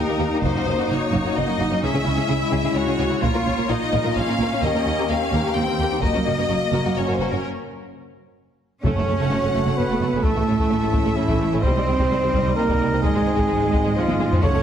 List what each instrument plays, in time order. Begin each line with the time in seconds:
Already playing: french horn section A#3 G4, viola section D#4, violin section A#4
0.06 cello section D#2, violin section A#3 G4
0.17 cello section D#2, double bass section D#2, violin section A#3 G4
0.30 cello section D#2, violin section G3
0.34 violin section D#4
0.41 double bass section F#1, cello section F#2, viola section D#4, french horn section F#4, violin section C5, taiko
0.45 violin section A#3 F#4
0.53 cello section F#2, violin section A#3 F#4
0.65 double bass section F#1, cello section F#2, violin section A#3 C#4
0.76 cello section F#2, violin section A#3 F#4
0.87 double bass section F#1, cello section F#2, violin section A#3 F#4
0.91 violin section C#5
1.11 double bass section F#1, cello section F#2, violin section A#3 F#4, taiko
1.23 cello section F#2, violin section A#3 F#4
1.34 double bass section F#1, cello section F#2, violin section A#3 C#4 D#5
1.46 cello section F#2, violin section A#3 F#4
1.57 double bass section F#1, cello section F#2, violin section A#3 F#4
1.70 cello section F#2, violin section A#3 C#4
1.82 double bass section C#2, cello section C#3, french horn section G#3 E4, violin section C#4 G#4 E5, viola section C#4
1.94 cello section C#3, violin section C#4 G#4
2.04 double bass section C#2, cello section C#3, violin section G#3 E4
2.16 cello section C#3, violin section C#4 G#4
2.28 double bass section C#2, cello section C#3, violin section C#4 G#4, viola section E4
2.51 double bass section C#2, cello section C#3, violin section C#4 G#4
2.63 cello section C#3, violin section C#4 G#4
2.74 double bass section C#2, cello section C#3, violin section G#3 E4 C#5, viola section F#4
2.86 cello section C#3, violin section C#4 G#4
2.97 double bass section C#2, cello section C#3, violin section C#4 G#4
3.09 cello section C#3, violin section G#3 E4
3.21 double bass section A#1, cello section A#2, french horn section A#3 F4, violin section F4 A#4 C#5, viola section F4, taiko
3.33 cello section A#2, violin section F4 A#4
3.45 double bass section A#1, cello section A#2, violin section C#4 F4
3.56 cello section A#2, violin section F4 A#4
3.68 double bass section A#1, cello section A#2, viola section D#4, violin section F4 A#4 D#5
3.92 double bass section A#1, cello section A#2, violin section F4 A#4
4.04 cello section A#2, violin section F4 A#4
4.16 double bass section A#1, cello section A#2, viola section C#4, violin section C#4 F4 F5
4.28 cello section A#2, violin section F4 A#4
4.39 double bass section A#1, cello section A#2, violin section F4 A#4
4.50 cello section A#2, violin section C#4 F4
4.62 cello section D#2, double bass section D#2, french horn section G4, violin section G4 A#4 D#5
4.74 cello section D#2, violin section G4 A#4
4.86 cello section D#2, double bass section D#2, violin section D#4 G4
4.97 cello section D#2, violin section G4 A#4
5.09 cello section D#2, double bass section D#2, violin section G4 A#4 F5
5.32 cello section D#2, double bass section D#2, violin section G4 A#4
5.44 cello section D#2, violin section G4 A#4
5.55 cello section D#2, double bass section D#2, viola section C4, violin section D#4 G4 G5
5.67 cello section D#2, violin section G4 A#4
5.79 cello section D#2, double bass section D#2, violin section G4 A#4
5.91 cello section D#2, violin section D#4 G4
6.01 double bass section F#1, cello section F#2, viola section A#3, french horn section A#3 F#4, violin section F#4 A#4 D#5, taiko
6.14 cello section F#2, violin section F#4 A#4
6.25 double bass section F#1, cello section F#2, violin section C#4 F#4
6.38 cello section F#2, violin section F#4 A#4
6.49 double bass section F#1, cello section F#2, viola section A#3, violin section F#4 A#4
6.72 double bass section F#1, cello section F#2, violin section F#4 A#4
6.85 cello section F#2, violin section F#4 A#4
6.96 double bass section F#1, cello section F#2, violin section C#4 F#4 C#5, viola section C#4
7.06 cello section F#2, violin section F#4 A#4
7.13 violin section C5
7.19 double bass section F#1, cello section F#2, violin section F#4 A#4
7.30 cello section F#2, violin section C#4 F#4 A#4
8.83 double bass section F#1, timpani F#2, viola section A3, french horn section A3 F#4, violin section A3 F#5, cello section C#4, trumpet C#5, taiko
8.96 double bass section F#1, viola section A3, violin section A3
9.08 double bass section F#1, viola section A3, violin section C#4
9.19 double bass section F#1, viola section A3, violin section A3
9.30 double bass section F#1, violin section A3, viola section A3
9.42 double bass section F#1, viola section A3, violin section C#4
9.54 double bass section F#1, violin section A3, viola section A3
9.66 double bass section F#1, viola section A3, violin section A3
9.77 double bass section F#1, viola section A3, cello section B3, violin section C#4, trumpet B4
9.89 double bass section F#1, viola section A3, violin section A3
10.00 double bass section F#1, violin section A3, viola section A3
10.12 double bass section F#1, viola section A3, violin section C#4
10.23 double bass section A1, cello section A3, violin section A3 E5, viola section A3, french horn section C#4 E4, trumpet A4, taiko
10.36 double bass section A1, violin section A3, viola section A3
10.47 double bass section A1, viola section A3, violin section C#4
10.58 double bass section A1, violin section A3, viola section A3, taiko
10.70 double bass section A1, violin section A3, viola section A3
10.82 double bass section A1, viola section A3, violin section C#4
10.92 double bass section A1, violin section A3, viola section A3, taiko
11.05 double bass section A1, violin section A3, viola section A3
11.16 double bass section A1, cello section E3, viola section A3, violin section C#4, trumpet E4
11.28 double bass section A1, violin section A3, viola section A3, taiko
11.39 double bass section A1, viola section A3, violin section A3
11.52 double bass section A1, viola section A3, violin section C#4
11.62 double bass section C2, violin section G3 D#5, viola section G3, cello section C4, french horn section C4 D#4, trumpet C5, taiko
11.76 double bass section C2, viola section G3, violin section G3
11.86 double bass section C2, viola section G3, violin section C4
11.98 double bass section C2, violin section G3, viola section G3, taiko
12.10 double bass section C2, violin section G3, viola section G3
12.22 double bass section C2, viola section G3, violin section C4
12.33 double bass section C2, violin section G3, viola section G3, taiko
12.45 double bass section C2, viola section G3, violin section G3
12.56 double bass section C2, viola section G3, cello section A#3, violin section C4, trumpet A#4
12.68 double bass section C2, viola section G3, violin section G3, taiko
12.81 double bass section C2, viola section G3, violin section G3
12.92 double bass section C2, viola section G3, violin section C4
13.02 double bass section G#1, cello section G#3, violin section G#3, viola section G#3, trumpet G#4, taiko
13.15 double bass section G#1, violin section G#3, viola section G#3
13.25 double bass section G#1, viola section G#3, violin section C4
13.35 violin section G#3, viola section G#3, taiko
13.39 double bass section G#1
13.47 double bass section G#1, violin section G#3, viola section G#3
13.58 viola section G#3, violin section C4
13.63 double bass section G#1
13.70 violin section G#3, viola section G#3, taiko
13.75 double bass section G#1
13.83 double bass section G#1, violin section G#3, viola section G#3
13.95 double bass section G#1, cello section F3, viola section G#3, violin section C4, trumpet F4
14.08 double bass section G#1, violin section G#3, viola section G#3, taiko high
14.20 double bass section G#1, violin section G#3, viola section G#3, taiko high
14.31 double bass section G#1, viola section G#3, violin section C4, taiko low
14.41 double bass section F#1, timpani F#2, violin section A3 F#5, french horn section A3 C#4, viola section A3, cello section C#4, trumpet C#5, taiko
14.53 double bass section F#1, violin section A3, viola section A3